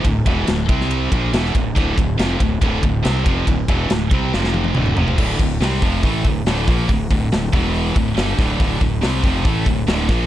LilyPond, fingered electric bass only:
\new Staff \with { instrumentName = "Fingered electric bass" } { \clef bass \time 4/4 \key d \minor \tempo 4 = 140 d,,8 e,,8 d,,8 c,4 bes,,8 e,,8 d,,8 | d,,8 d,,8 f,,8 d,,8 d,,8 d,,8 c,8 f,,8 | d,,8 e,,8 d,,8 c,8 f,,4 d,,8 f,,8 | d,,8 d,,8 c,8 f,,8 a,,8 d,,8 d,,8 bes,,8 |
d,,8 d,,8 d,,8 e,,4 d,,8 g,,8 d,,8 | d,,8 d,,8 c,8 f,,8 a,,8 d,,8 d,,8 bes,,8 | }